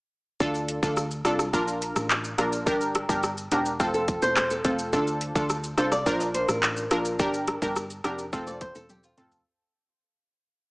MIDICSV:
0, 0, Header, 1, 5, 480
1, 0, Start_track
1, 0, Key_signature, -1, "minor"
1, 0, Tempo, 566038
1, 342, Time_signature, 4, 2, 24, 8
1, 9080, End_track
2, 0, Start_track
2, 0, Title_t, "Nylon-string guitar"
2, 0, Program_c, 0, 24
2, 3343, Note_on_c, 0, 69, 83
2, 3570, Note_off_c, 0, 69, 0
2, 3582, Note_on_c, 0, 72, 83
2, 3693, Note_off_c, 0, 72, 0
2, 3703, Note_on_c, 0, 72, 85
2, 3816, Note_off_c, 0, 72, 0
2, 3823, Note_on_c, 0, 69, 78
2, 4165, Note_off_c, 0, 69, 0
2, 4901, Note_on_c, 0, 72, 73
2, 5015, Note_off_c, 0, 72, 0
2, 5019, Note_on_c, 0, 74, 88
2, 5140, Note_off_c, 0, 74, 0
2, 5140, Note_on_c, 0, 72, 90
2, 5260, Note_off_c, 0, 72, 0
2, 5260, Note_on_c, 0, 74, 90
2, 5375, Note_off_c, 0, 74, 0
2, 5378, Note_on_c, 0, 72, 82
2, 5499, Note_off_c, 0, 72, 0
2, 5499, Note_on_c, 0, 70, 73
2, 6070, Note_off_c, 0, 70, 0
2, 7183, Note_on_c, 0, 74, 80
2, 7296, Note_off_c, 0, 74, 0
2, 7301, Note_on_c, 0, 72, 82
2, 7416, Note_off_c, 0, 72, 0
2, 7422, Note_on_c, 0, 69, 84
2, 7543, Note_off_c, 0, 69, 0
2, 7543, Note_on_c, 0, 67, 88
2, 7663, Note_off_c, 0, 67, 0
2, 7663, Note_on_c, 0, 65, 76
2, 8005, Note_off_c, 0, 65, 0
2, 9080, End_track
3, 0, Start_track
3, 0, Title_t, "Synth stab"
3, 0, Program_c, 1, 62
3, 341, Note_on_c, 1, 62, 100
3, 343, Note_on_c, 1, 65, 89
3, 346, Note_on_c, 1, 69, 105
3, 673, Note_off_c, 1, 62, 0
3, 674, Note_off_c, 1, 65, 0
3, 675, Note_off_c, 1, 69, 0
3, 699, Note_on_c, 1, 62, 82
3, 703, Note_on_c, 1, 65, 71
3, 705, Note_on_c, 1, 69, 89
3, 880, Note_off_c, 1, 62, 0
3, 881, Note_off_c, 1, 65, 0
3, 882, Note_off_c, 1, 69, 0
3, 1060, Note_on_c, 1, 62, 79
3, 1062, Note_on_c, 1, 65, 68
3, 1065, Note_on_c, 1, 69, 88
3, 1240, Note_off_c, 1, 62, 0
3, 1241, Note_off_c, 1, 65, 0
3, 1242, Note_off_c, 1, 69, 0
3, 1298, Note_on_c, 1, 62, 98
3, 1301, Note_on_c, 1, 65, 85
3, 1303, Note_on_c, 1, 70, 103
3, 1962, Note_off_c, 1, 62, 0
3, 1964, Note_off_c, 1, 65, 0
3, 1965, Note_off_c, 1, 70, 0
3, 2017, Note_on_c, 1, 62, 75
3, 2019, Note_on_c, 1, 65, 70
3, 2022, Note_on_c, 1, 70, 84
3, 2240, Note_off_c, 1, 62, 0
3, 2241, Note_off_c, 1, 65, 0
3, 2243, Note_off_c, 1, 70, 0
3, 2256, Note_on_c, 1, 62, 100
3, 2259, Note_on_c, 1, 67, 90
3, 2261, Note_on_c, 1, 70, 108
3, 2590, Note_off_c, 1, 62, 0
3, 2591, Note_off_c, 1, 67, 0
3, 2593, Note_off_c, 1, 70, 0
3, 2618, Note_on_c, 1, 62, 78
3, 2620, Note_on_c, 1, 67, 73
3, 2623, Note_on_c, 1, 70, 88
3, 2799, Note_off_c, 1, 62, 0
3, 2800, Note_off_c, 1, 67, 0
3, 2801, Note_off_c, 1, 70, 0
3, 2981, Note_on_c, 1, 62, 80
3, 2983, Note_on_c, 1, 67, 72
3, 2985, Note_on_c, 1, 70, 87
3, 3160, Note_off_c, 1, 62, 0
3, 3161, Note_off_c, 1, 67, 0
3, 3162, Note_off_c, 1, 70, 0
3, 3219, Note_on_c, 1, 60, 92
3, 3222, Note_on_c, 1, 65, 88
3, 3223, Note_on_c, 1, 69, 105
3, 3883, Note_off_c, 1, 60, 0
3, 3884, Note_off_c, 1, 65, 0
3, 3885, Note_off_c, 1, 69, 0
3, 3938, Note_on_c, 1, 60, 78
3, 3941, Note_on_c, 1, 65, 73
3, 3944, Note_on_c, 1, 69, 84
3, 4161, Note_off_c, 1, 60, 0
3, 4162, Note_off_c, 1, 65, 0
3, 4164, Note_off_c, 1, 69, 0
3, 4178, Note_on_c, 1, 62, 97
3, 4180, Note_on_c, 1, 65, 90
3, 4184, Note_on_c, 1, 69, 109
3, 4511, Note_off_c, 1, 62, 0
3, 4512, Note_off_c, 1, 65, 0
3, 4514, Note_off_c, 1, 69, 0
3, 4538, Note_on_c, 1, 62, 81
3, 4541, Note_on_c, 1, 65, 74
3, 4543, Note_on_c, 1, 69, 90
3, 4719, Note_off_c, 1, 62, 0
3, 4720, Note_off_c, 1, 65, 0
3, 4721, Note_off_c, 1, 69, 0
3, 4899, Note_on_c, 1, 62, 77
3, 4902, Note_on_c, 1, 65, 73
3, 4904, Note_on_c, 1, 69, 85
3, 5079, Note_off_c, 1, 62, 0
3, 5081, Note_off_c, 1, 65, 0
3, 5082, Note_off_c, 1, 69, 0
3, 5138, Note_on_c, 1, 62, 99
3, 5141, Note_on_c, 1, 65, 87
3, 5143, Note_on_c, 1, 70, 109
3, 5803, Note_off_c, 1, 62, 0
3, 5804, Note_off_c, 1, 65, 0
3, 5805, Note_off_c, 1, 70, 0
3, 5858, Note_on_c, 1, 62, 77
3, 5861, Note_on_c, 1, 65, 73
3, 5864, Note_on_c, 1, 70, 84
3, 6081, Note_off_c, 1, 62, 0
3, 6082, Note_off_c, 1, 65, 0
3, 6084, Note_off_c, 1, 70, 0
3, 6099, Note_on_c, 1, 62, 100
3, 6102, Note_on_c, 1, 67, 91
3, 6104, Note_on_c, 1, 70, 106
3, 6432, Note_off_c, 1, 62, 0
3, 6433, Note_off_c, 1, 67, 0
3, 6434, Note_off_c, 1, 70, 0
3, 6459, Note_on_c, 1, 62, 77
3, 6461, Note_on_c, 1, 67, 75
3, 6464, Note_on_c, 1, 70, 92
3, 6639, Note_off_c, 1, 62, 0
3, 6640, Note_off_c, 1, 67, 0
3, 6642, Note_off_c, 1, 70, 0
3, 6819, Note_on_c, 1, 62, 78
3, 6822, Note_on_c, 1, 67, 71
3, 6824, Note_on_c, 1, 70, 91
3, 6999, Note_off_c, 1, 62, 0
3, 7001, Note_off_c, 1, 67, 0
3, 7002, Note_off_c, 1, 70, 0
3, 7060, Note_on_c, 1, 60, 96
3, 7062, Note_on_c, 1, 65, 84
3, 7064, Note_on_c, 1, 69, 102
3, 7723, Note_off_c, 1, 60, 0
3, 7724, Note_off_c, 1, 65, 0
3, 7725, Note_off_c, 1, 69, 0
3, 7779, Note_on_c, 1, 60, 75
3, 7782, Note_on_c, 1, 65, 72
3, 7785, Note_on_c, 1, 69, 88
3, 8001, Note_off_c, 1, 60, 0
3, 8003, Note_off_c, 1, 65, 0
3, 8004, Note_off_c, 1, 69, 0
3, 9080, End_track
4, 0, Start_track
4, 0, Title_t, "Picked electric bass"
4, 0, Program_c, 2, 34
4, 343, Note_on_c, 2, 38, 107
4, 662, Note_off_c, 2, 38, 0
4, 702, Note_on_c, 2, 38, 101
4, 1021, Note_off_c, 2, 38, 0
4, 1061, Note_on_c, 2, 36, 93
4, 1274, Note_off_c, 2, 36, 0
4, 1302, Note_on_c, 2, 34, 107
4, 1621, Note_off_c, 2, 34, 0
4, 1660, Note_on_c, 2, 33, 89
4, 1980, Note_off_c, 2, 33, 0
4, 2020, Note_on_c, 2, 34, 102
4, 2262, Note_off_c, 2, 34, 0
4, 2262, Note_on_c, 2, 31, 101
4, 2581, Note_off_c, 2, 31, 0
4, 2621, Note_on_c, 2, 31, 94
4, 2941, Note_off_c, 2, 31, 0
4, 2982, Note_on_c, 2, 28, 98
4, 3194, Note_off_c, 2, 28, 0
4, 3222, Note_on_c, 2, 29, 111
4, 3541, Note_off_c, 2, 29, 0
4, 3582, Note_on_c, 2, 28, 86
4, 3901, Note_off_c, 2, 28, 0
4, 3940, Note_on_c, 2, 29, 94
4, 4182, Note_on_c, 2, 38, 109
4, 4194, Note_off_c, 2, 29, 0
4, 4501, Note_off_c, 2, 38, 0
4, 4540, Note_on_c, 2, 38, 96
4, 4860, Note_off_c, 2, 38, 0
4, 4901, Note_on_c, 2, 36, 101
4, 5114, Note_off_c, 2, 36, 0
4, 5142, Note_on_c, 2, 34, 108
4, 5461, Note_off_c, 2, 34, 0
4, 5501, Note_on_c, 2, 33, 88
4, 5821, Note_off_c, 2, 33, 0
4, 5862, Note_on_c, 2, 34, 103
4, 6101, Note_off_c, 2, 34, 0
4, 6101, Note_on_c, 2, 31, 105
4, 6421, Note_off_c, 2, 31, 0
4, 6461, Note_on_c, 2, 31, 96
4, 6781, Note_off_c, 2, 31, 0
4, 6824, Note_on_c, 2, 29, 95
4, 7036, Note_off_c, 2, 29, 0
4, 7062, Note_on_c, 2, 29, 113
4, 7381, Note_off_c, 2, 29, 0
4, 7423, Note_on_c, 2, 28, 97
4, 7742, Note_off_c, 2, 28, 0
4, 7783, Note_on_c, 2, 29, 97
4, 7995, Note_off_c, 2, 29, 0
4, 9080, End_track
5, 0, Start_track
5, 0, Title_t, "Drums"
5, 342, Note_on_c, 9, 36, 118
5, 342, Note_on_c, 9, 82, 68
5, 343, Note_off_c, 9, 82, 0
5, 343, Note_on_c, 9, 82, 75
5, 427, Note_off_c, 9, 36, 0
5, 428, Note_off_c, 9, 82, 0
5, 461, Note_on_c, 9, 82, 50
5, 467, Note_off_c, 9, 82, 0
5, 467, Note_on_c, 9, 82, 53
5, 551, Note_off_c, 9, 82, 0
5, 581, Note_on_c, 9, 42, 78
5, 581, Note_on_c, 9, 82, 56
5, 665, Note_off_c, 9, 42, 0
5, 665, Note_off_c, 9, 82, 0
5, 702, Note_on_c, 9, 36, 91
5, 704, Note_on_c, 9, 82, 80
5, 705, Note_off_c, 9, 82, 0
5, 705, Note_on_c, 9, 82, 76
5, 786, Note_off_c, 9, 36, 0
5, 790, Note_off_c, 9, 82, 0
5, 818, Note_on_c, 9, 82, 73
5, 823, Note_on_c, 9, 37, 88
5, 827, Note_off_c, 9, 82, 0
5, 827, Note_on_c, 9, 82, 86
5, 908, Note_off_c, 9, 37, 0
5, 912, Note_off_c, 9, 82, 0
5, 941, Note_on_c, 9, 82, 55
5, 1026, Note_off_c, 9, 82, 0
5, 1059, Note_on_c, 9, 37, 103
5, 1061, Note_on_c, 9, 42, 83
5, 1061, Note_on_c, 9, 82, 56
5, 1067, Note_off_c, 9, 82, 0
5, 1067, Note_on_c, 9, 82, 54
5, 1143, Note_off_c, 9, 37, 0
5, 1145, Note_off_c, 9, 42, 0
5, 1152, Note_off_c, 9, 82, 0
5, 1180, Note_on_c, 9, 37, 93
5, 1181, Note_on_c, 9, 82, 82
5, 1265, Note_off_c, 9, 37, 0
5, 1266, Note_off_c, 9, 82, 0
5, 1302, Note_on_c, 9, 36, 101
5, 1303, Note_on_c, 9, 82, 87
5, 1307, Note_off_c, 9, 82, 0
5, 1307, Note_on_c, 9, 82, 76
5, 1387, Note_off_c, 9, 36, 0
5, 1392, Note_off_c, 9, 82, 0
5, 1422, Note_on_c, 9, 82, 57
5, 1424, Note_off_c, 9, 82, 0
5, 1424, Note_on_c, 9, 82, 61
5, 1509, Note_off_c, 9, 82, 0
5, 1540, Note_on_c, 9, 82, 56
5, 1543, Note_off_c, 9, 82, 0
5, 1543, Note_on_c, 9, 42, 74
5, 1543, Note_on_c, 9, 82, 52
5, 1628, Note_off_c, 9, 42, 0
5, 1628, Note_off_c, 9, 82, 0
5, 1663, Note_on_c, 9, 37, 99
5, 1663, Note_on_c, 9, 82, 84
5, 1748, Note_off_c, 9, 37, 0
5, 1748, Note_off_c, 9, 82, 0
5, 1783, Note_on_c, 9, 82, 85
5, 1784, Note_on_c, 9, 39, 93
5, 1785, Note_off_c, 9, 82, 0
5, 1785, Note_on_c, 9, 82, 72
5, 1869, Note_off_c, 9, 39, 0
5, 1870, Note_off_c, 9, 82, 0
5, 1900, Note_on_c, 9, 82, 52
5, 1905, Note_off_c, 9, 82, 0
5, 1905, Note_on_c, 9, 82, 59
5, 1989, Note_off_c, 9, 82, 0
5, 2022, Note_on_c, 9, 42, 78
5, 2022, Note_on_c, 9, 82, 52
5, 2023, Note_on_c, 9, 37, 101
5, 2106, Note_off_c, 9, 42, 0
5, 2107, Note_off_c, 9, 82, 0
5, 2108, Note_off_c, 9, 37, 0
5, 2141, Note_on_c, 9, 82, 77
5, 2142, Note_off_c, 9, 82, 0
5, 2142, Note_on_c, 9, 82, 79
5, 2227, Note_off_c, 9, 82, 0
5, 2262, Note_on_c, 9, 36, 120
5, 2262, Note_on_c, 9, 82, 77
5, 2347, Note_off_c, 9, 36, 0
5, 2347, Note_off_c, 9, 82, 0
5, 2381, Note_on_c, 9, 82, 50
5, 2385, Note_off_c, 9, 82, 0
5, 2385, Note_on_c, 9, 82, 54
5, 2470, Note_off_c, 9, 82, 0
5, 2501, Note_on_c, 9, 42, 78
5, 2501, Note_on_c, 9, 82, 56
5, 2505, Note_on_c, 9, 37, 95
5, 2586, Note_off_c, 9, 42, 0
5, 2586, Note_off_c, 9, 82, 0
5, 2590, Note_off_c, 9, 37, 0
5, 2622, Note_on_c, 9, 36, 95
5, 2624, Note_on_c, 9, 82, 76
5, 2625, Note_off_c, 9, 82, 0
5, 2625, Note_on_c, 9, 82, 74
5, 2706, Note_off_c, 9, 36, 0
5, 2710, Note_off_c, 9, 82, 0
5, 2739, Note_on_c, 9, 82, 74
5, 2744, Note_on_c, 9, 37, 88
5, 2747, Note_off_c, 9, 82, 0
5, 2747, Note_on_c, 9, 82, 79
5, 2829, Note_off_c, 9, 37, 0
5, 2832, Note_off_c, 9, 82, 0
5, 2861, Note_on_c, 9, 82, 47
5, 2862, Note_off_c, 9, 82, 0
5, 2862, Note_on_c, 9, 82, 58
5, 2947, Note_off_c, 9, 82, 0
5, 2981, Note_on_c, 9, 42, 78
5, 2981, Note_on_c, 9, 82, 56
5, 2988, Note_off_c, 9, 82, 0
5, 2988, Note_on_c, 9, 65, 76
5, 2988, Note_on_c, 9, 82, 54
5, 3066, Note_off_c, 9, 42, 0
5, 3073, Note_off_c, 9, 65, 0
5, 3073, Note_off_c, 9, 82, 0
5, 3100, Note_on_c, 9, 82, 78
5, 3101, Note_off_c, 9, 82, 0
5, 3101, Note_on_c, 9, 82, 62
5, 3186, Note_off_c, 9, 82, 0
5, 3221, Note_on_c, 9, 82, 84
5, 3222, Note_on_c, 9, 36, 93
5, 3226, Note_off_c, 9, 82, 0
5, 3226, Note_on_c, 9, 82, 80
5, 3307, Note_off_c, 9, 36, 0
5, 3311, Note_off_c, 9, 82, 0
5, 3341, Note_on_c, 9, 82, 56
5, 3342, Note_off_c, 9, 82, 0
5, 3342, Note_on_c, 9, 82, 62
5, 3427, Note_off_c, 9, 82, 0
5, 3461, Note_on_c, 9, 42, 73
5, 3461, Note_on_c, 9, 82, 57
5, 3462, Note_on_c, 9, 36, 102
5, 3545, Note_off_c, 9, 42, 0
5, 3546, Note_off_c, 9, 82, 0
5, 3547, Note_off_c, 9, 36, 0
5, 3580, Note_on_c, 9, 82, 79
5, 3582, Note_off_c, 9, 82, 0
5, 3582, Note_on_c, 9, 82, 83
5, 3667, Note_off_c, 9, 82, 0
5, 3700, Note_on_c, 9, 82, 88
5, 3702, Note_off_c, 9, 82, 0
5, 3702, Note_on_c, 9, 37, 95
5, 3702, Note_on_c, 9, 39, 94
5, 3702, Note_on_c, 9, 82, 73
5, 3786, Note_off_c, 9, 37, 0
5, 3786, Note_off_c, 9, 39, 0
5, 3787, Note_off_c, 9, 82, 0
5, 3818, Note_on_c, 9, 82, 56
5, 3823, Note_off_c, 9, 82, 0
5, 3823, Note_on_c, 9, 82, 58
5, 3908, Note_off_c, 9, 82, 0
5, 3939, Note_on_c, 9, 42, 76
5, 3939, Note_on_c, 9, 82, 58
5, 3941, Note_on_c, 9, 36, 99
5, 4024, Note_off_c, 9, 42, 0
5, 4024, Note_off_c, 9, 82, 0
5, 4026, Note_off_c, 9, 36, 0
5, 4059, Note_on_c, 9, 82, 76
5, 4144, Note_off_c, 9, 82, 0
5, 4180, Note_on_c, 9, 82, 68
5, 4182, Note_off_c, 9, 82, 0
5, 4182, Note_on_c, 9, 36, 115
5, 4182, Note_on_c, 9, 82, 78
5, 4267, Note_off_c, 9, 36, 0
5, 4267, Note_off_c, 9, 82, 0
5, 4300, Note_on_c, 9, 82, 48
5, 4304, Note_off_c, 9, 82, 0
5, 4304, Note_on_c, 9, 82, 53
5, 4389, Note_off_c, 9, 82, 0
5, 4419, Note_on_c, 9, 42, 79
5, 4419, Note_on_c, 9, 82, 57
5, 4503, Note_off_c, 9, 42, 0
5, 4503, Note_off_c, 9, 82, 0
5, 4541, Note_on_c, 9, 36, 96
5, 4542, Note_on_c, 9, 82, 73
5, 4543, Note_off_c, 9, 82, 0
5, 4543, Note_on_c, 9, 82, 75
5, 4626, Note_off_c, 9, 36, 0
5, 4628, Note_off_c, 9, 82, 0
5, 4658, Note_on_c, 9, 82, 75
5, 4662, Note_on_c, 9, 37, 84
5, 4665, Note_off_c, 9, 82, 0
5, 4665, Note_on_c, 9, 82, 82
5, 4747, Note_off_c, 9, 37, 0
5, 4750, Note_off_c, 9, 82, 0
5, 4779, Note_on_c, 9, 82, 49
5, 4780, Note_off_c, 9, 82, 0
5, 4780, Note_on_c, 9, 82, 59
5, 4865, Note_off_c, 9, 82, 0
5, 4898, Note_on_c, 9, 37, 99
5, 4900, Note_on_c, 9, 42, 83
5, 4900, Note_on_c, 9, 82, 57
5, 4904, Note_off_c, 9, 82, 0
5, 4904, Note_on_c, 9, 82, 55
5, 4983, Note_off_c, 9, 37, 0
5, 4985, Note_off_c, 9, 42, 0
5, 4989, Note_off_c, 9, 82, 0
5, 5018, Note_on_c, 9, 37, 90
5, 5019, Note_on_c, 9, 82, 63
5, 5103, Note_off_c, 9, 37, 0
5, 5104, Note_off_c, 9, 82, 0
5, 5140, Note_on_c, 9, 82, 82
5, 5142, Note_on_c, 9, 36, 98
5, 5146, Note_off_c, 9, 82, 0
5, 5146, Note_on_c, 9, 82, 78
5, 5226, Note_off_c, 9, 36, 0
5, 5231, Note_off_c, 9, 82, 0
5, 5260, Note_on_c, 9, 82, 56
5, 5262, Note_off_c, 9, 82, 0
5, 5262, Note_on_c, 9, 82, 62
5, 5346, Note_off_c, 9, 82, 0
5, 5381, Note_on_c, 9, 42, 74
5, 5381, Note_on_c, 9, 82, 59
5, 5466, Note_off_c, 9, 42, 0
5, 5466, Note_off_c, 9, 82, 0
5, 5500, Note_on_c, 9, 37, 100
5, 5500, Note_on_c, 9, 82, 80
5, 5505, Note_off_c, 9, 82, 0
5, 5505, Note_on_c, 9, 82, 83
5, 5585, Note_off_c, 9, 37, 0
5, 5590, Note_off_c, 9, 82, 0
5, 5620, Note_on_c, 9, 82, 84
5, 5621, Note_on_c, 9, 39, 97
5, 5624, Note_off_c, 9, 82, 0
5, 5624, Note_on_c, 9, 82, 72
5, 5706, Note_off_c, 9, 39, 0
5, 5708, Note_off_c, 9, 82, 0
5, 5738, Note_on_c, 9, 82, 55
5, 5745, Note_off_c, 9, 82, 0
5, 5745, Note_on_c, 9, 82, 59
5, 5829, Note_off_c, 9, 82, 0
5, 5859, Note_on_c, 9, 42, 80
5, 5859, Note_on_c, 9, 82, 58
5, 5861, Note_off_c, 9, 82, 0
5, 5861, Note_on_c, 9, 37, 102
5, 5861, Note_on_c, 9, 82, 53
5, 5944, Note_off_c, 9, 42, 0
5, 5945, Note_off_c, 9, 37, 0
5, 5945, Note_off_c, 9, 82, 0
5, 5979, Note_on_c, 9, 82, 77
5, 6064, Note_off_c, 9, 82, 0
5, 6099, Note_on_c, 9, 82, 70
5, 6101, Note_on_c, 9, 36, 119
5, 6102, Note_off_c, 9, 82, 0
5, 6102, Note_on_c, 9, 82, 74
5, 6186, Note_off_c, 9, 36, 0
5, 6187, Note_off_c, 9, 82, 0
5, 6221, Note_on_c, 9, 82, 51
5, 6224, Note_off_c, 9, 82, 0
5, 6224, Note_on_c, 9, 82, 54
5, 6309, Note_off_c, 9, 82, 0
5, 6339, Note_on_c, 9, 42, 77
5, 6339, Note_on_c, 9, 82, 55
5, 6343, Note_on_c, 9, 37, 95
5, 6424, Note_off_c, 9, 42, 0
5, 6424, Note_off_c, 9, 82, 0
5, 6428, Note_off_c, 9, 37, 0
5, 6461, Note_on_c, 9, 36, 94
5, 6462, Note_on_c, 9, 82, 78
5, 6464, Note_off_c, 9, 82, 0
5, 6464, Note_on_c, 9, 82, 72
5, 6546, Note_off_c, 9, 36, 0
5, 6549, Note_off_c, 9, 82, 0
5, 6579, Note_on_c, 9, 82, 77
5, 6584, Note_on_c, 9, 37, 87
5, 6586, Note_off_c, 9, 82, 0
5, 6586, Note_on_c, 9, 82, 84
5, 6668, Note_off_c, 9, 37, 0
5, 6671, Note_off_c, 9, 82, 0
5, 6699, Note_on_c, 9, 82, 47
5, 6701, Note_off_c, 9, 82, 0
5, 6701, Note_on_c, 9, 82, 57
5, 6786, Note_off_c, 9, 82, 0
5, 6820, Note_on_c, 9, 37, 100
5, 6822, Note_on_c, 9, 42, 78
5, 6822, Note_on_c, 9, 82, 57
5, 6826, Note_off_c, 9, 82, 0
5, 6826, Note_on_c, 9, 65, 76
5, 6826, Note_on_c, 9, 82, 53
5, 6905, Note_off_c, 9, 37, 0
5, 6907, Note_off_c, 9, 42, 0
5, 6911, Note_off_c, 9, 65, 0
5, 6911, Note_off_c, 9, 82, 0
5, 6939, Note_on_c, 9, 82, 78
5, 6942, Note_off_c, 9, 82, 0
5, 6942, Note_on_c, 9, 82, 65
5, 7027, Note_off_c, 9, 82, 0
5, 7063, Note_on_c, 9, 36, 100
5, 7063, Note_on_c, 9, 82, 87
5, 7067, Note_off_c, 9, 82, 0
5, 7067, Note_on_c, 9, 82, 74
5, 7148, Note_off_c, 9, 36, 0
5, 7152, Note_off_c, 9, 82, 0
5, 7181, Note_on_c, 9, 82, 58
5, 7184, Note_off_c, 9, 82, 0
5, 7184, Note_on_c, 9, 82, 62
5, 7269, Note_off_c, 9, 82, 0
5, 7301, Note_on_c, 9, 42, 77
5, 7301, Note_on_c, 9, 82, 54
5, 7303, Note_on_c, 9, 36, 96
5, 7386, Note_off_c, 9, 42, 0
5, 7386, Note_off_c, 9, 82, 0
5, 7387, Note_off_c, 9, 36, 0
5, 7421, Note_on_c, 9, 82, 82
5, 7423, Note_off_c, 9, 82, 0
5, 7423, Note_on_c, 9, 82, 78
5, 7508, Note_off_c, 9, 82, 0
5, 7541, Note_on_c, 9, 82, 81
5, 7542, Note_on_c, 9, 48, 58
5, 7543, Note_off_c, 9, 82, 0
5, 7543, Note_on_c, 9, 82, 76
5, 7627, Note_off_c, 9, 48, 0
5, 7627, Note_off_c, 9, 82, 0
5, 7661, Note_on_c, 9, 82, 54
5, 7664, Note_off_c, 9, 82, 0
5, 7664, Note_on_c, 9, 82, 57
5, 7749, Note_off_c, 9, 82, 0
5, 7782, Note_on_c, 9, 42, 78
5, 7782, Note_on_c, 9, 82, 57
5, 7783, Note_on_c, 9, 45, 100
5, 7867, Note_off_c, 9, 42, 0
5, 7867, Note_off_c, 9, 82, 0
5, 7868, Note_off_c, 9, 45, 0
5, 7900, Note_on_c, 9, 82, 81
5, 7901, Note_off_c, 9, 82, 0
5, 7901, Note_on_c, 9, 43, 94
5, 7901, Note_on_c, 9, 82, 83
5, 7986, Note_off_c, 9, 43, 0
5, 7986, Note_off_c, 9, 82, 0
5, 9080, End_track
0, 0, End_of_file